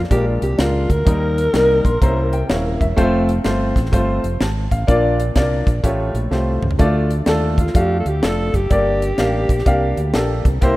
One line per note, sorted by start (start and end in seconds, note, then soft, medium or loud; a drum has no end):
0.04 snare soft
0.10 0.37 A#1 medium
0.10 0.86 A#2 medium
0.10 0.42 G#3 medium
0.10 0.42 D4 medium
0.10 0.43 F4 medium
0.10 0.25 G4 medium
0.10 0.43 A#4 medium
0.10 kick medium
0.10 closed hi-hat medium
0.42 0.56 C2 medium
0.42 0.60 G4 medium
0.42 closed hi-hat medium
0.58 0.85 C#2 medium
0.58 0.89 G#3 medium
0.58 0.90 D4 medium
0.58 0.90 F4 medium
0.58 0.92 F4 medium
0.58 0.90 A#4 medium
0.58 snare loud
0.58 closed hi-hat medium
0.90 1.04 D2 medium
0.90 2.81 A#4 loud
0.90 kick medium
0.90 closed hi-hat medium
1.05 1.47 D#2 loud
1.05 1.81 D#3 medium
1.05 1.37 G3 medium
1.05 1.37 A#3 medium
1.05 1.38 D#4 medium
1.05 1.38 A#4 medium
1.05 kick loud
1.05 closed hi-hat medium
1.38 closed hi-hat medium
1.53 1.80 C2 medium
1.53 1.85 G3 medium
1.53 1.85 A#3 medium
1.53 1.86 D#4 medium
1.53 1.86 A#4 medium
1.53 snare medium
1.53 closed hi-hat medium
1.85 1.99 A#1 medium
1.85 2.01 C6 medium
1.85 kick medium
1.85 closed hi-hat medium
2.01 2.42 C2 medium
2.01 2.77 C3 medium
2.01 2.33 A#3 medium
2.01 2.33 C#4 medium
2.01 2.34 E4 medium
2.01 2.34 C5 medium
2.01 2.31 A#5 medium
2.01 kick medium
2.01 closed hi-hat loud
2.33 2.49 G5 medium
2.33 closed hi-hat medium
2.49 2.76 D#1 medium
2.49 2.80 A#3 medium
2.49 2.81 C#4 medium
2.49 2.81 E4 medium
2.49 2.81 C#5 medium
2.49 2.78 F5 medium
2.49 snare loud
2.49 closed hi-hat medium
2.81 2.95 E1 medium
2.81 2.97 E5 medium
2.81 kick medium
2.81 closed hi-hat medium
2.97 3.38 F1 loud
2.97 3.28 A3 loud
2.97 3.28 C4 loud
2.97 3.29 F4 loud
2.97 3.29 C5 loud
2.97 kick loud
2.97 closed hi-hat medium
3.29 closed hi-hat medium
3.44 3.71 G1 medium
3.44 3.76 A3 medium
3.44 3.76 C4 medium
3.44 3.77 F4 medium
3.44 3.77 C5 medium
3.44 snare medium
3.44 closed hi-hat medium
3.76 3.90 A1 medium
3.76 kick medium
3.76 snare soft
3.76 closed hi-hat medium
3.85 snare soft
3.92 4.19 G1 medium
3.92 4.24 A3 medium
3.92 4.24 C4 medium
3.92 4.24 F4 medium
3.92 4.25 C5 medium
3.92 kick loud
3.92 closed hi-hat loud
4.24 4.38 F1 medium
4.24 closed hi-hat medium
4.41 4.67 G#1 medium
4.41 4.70 A5 medium
4.41 snare loud
4.41 closed hi-hat medium
4.71 4.86 A1 medium
4.71 5.17 F5 medium
4.71 kick medium
4.71 closed hi-hat medium
4.87 5.29 A#1 loud
4.87 5.63 A#2 medium
4.87 5.19 A#3 loud
4.87 5.19 D4 medium
4.87 5.20 F4 medium
4.87 5.20 D5 loud
4.87 kick loud
4.87 closed hi-hat medium
5.20 closed hi-hat medium
5.35 5.62 C2 medium
5.35 5.67 A#3 medium
5.35 5.67 D4 medium
5.35 5.68 F4 medium
5.35 5.68 D5 medium
5.35 kick medium
5.35 snare medium
5.35 closed hi-hat medium
5.67 5.81 A#1 medium
5.67 kick medium
5.67 closed hi-hat medium
5.83 6.10 A1 medium
5.83 6.59 A2 medium
5.83 6.15 A3 medium
5.83 6.15 F4 medium
5.83 6.15 G4 medium
5.83 6.16 C#5 medium
5.83 kick medium
5.83 closed hi-hat medium
6.14 6.29 A#1 medium
6.14 closed hi-hat medium
6.31 6.58 C2 medium
6.31 6.63 A3 medium
6.31 6.63 F4 medium
6.31 6.63 G4 medium
6.31 6.63 C5 medium
6.31 snare medium
6.62 6.77 C#2 medium
6.62 mid tom medium
6.71 floor tom medium
6.79 7.20 D2 medium
6.79 7.54 D3 medium
6.79 7.10 A3 loud
6.79 7.11 D4 medium
6.79 7.11 F4 medium
6.79 7.11 D5 loud
6.79 kick loud
6.79 closed hi-hat medium
7.11 closed hi-hat medium
7.26 7.68 D#2 medium
7.26 7.58 A3 medium
7.26 7.59 D4 medium
7.26 7.59 F4 medium
7.26 7.59 A4 medium
7.26 snare medium
7.26 closed hi-hat medium
7.58 7.79 F4 medium
7.58 kick medium
7.58 closed hi-hat medium
7.67 snare soft
7.74 8.01 F2 medium
7.74 8.06 A3 medium
7.74 8.06 D4 medium
7.74 8.07 F4 medium
7.74 7.99 G4 loud
7.74 8.07 F5 medium
7.74 kick loud
7.74 closed hi-hat loud
8.00 8.09 A4 medium
8.06 8.20 D2 medium
8.06 8.26 G4 medium
8.06 closed hi-hat medium
8.22 8.49 F1 medium
8.22 8.54 A3 medium
8.22 8.54 D4 medium
8.22 8.54 F4 medium
8.22 8.57 A4 medium
8.22 8.55 A4 medium
8.22 snare loud
8.22 closed hi-hat medium
8.54 8.68 F#1 medium
8.54 10.46 G4 medium
8.54 kick medium
8.54 closed hi-hat medium
8.70 9.11 G1 medium
8.70 9.46 G2 medium
8.70 9.02 A#3 medium
8.70 9.02 D4 medium
8.70 9.02 G4 medium
8.70 9.03 D5 medium
8.70 kick loud
8.70 closed hi-hat medium
9.02 closed hi-hat medium
9.18 9.45 A1 medium
9.18 9.49 A#3 medium
9.18 9.50 D4 medium
9.18 9.50 G4 medium
9.18 9.50 F5 medium
9.18 snare medium
9.18 closed hi-hat medium
9.49 9.64 A#1 medium
9.49 kick medium
9.49 closed hi-hat medium
9.59 snare soft
9.66 9.93 C2 medium
9.66 9.97 A#3 medium
9.66 9.98 D4 medium
9.66 9.98 G4 medium
9.66 9.98 F5 medium
9.66 kick medium
9.66 closed hi-hat loud
9.97 10.12 D2 medium
9.97 closed hi-hat medium
10.13 10.41 A#1 medium
10.13 10.45 A#3 medium
10.13 10.45 D4 medium
10.13 10.46 G4 medium
10.13 10.46 A4 medium
10.13 snare loud
10.13 closed hi-hat medium
10.45 10.59 C2 medium
10.45 kick medium
10.45 closed hi-hat medium
10.61 10.77 C2 medium
10.61 10.77 C3 medium
10.61 10.77 A#3 loud
10.61 10.77 E4 medium
10.61 10.77 G4 medium
10.61 10.77 C5 loud
10.61 kick loud
10.61 closed hi-hat medium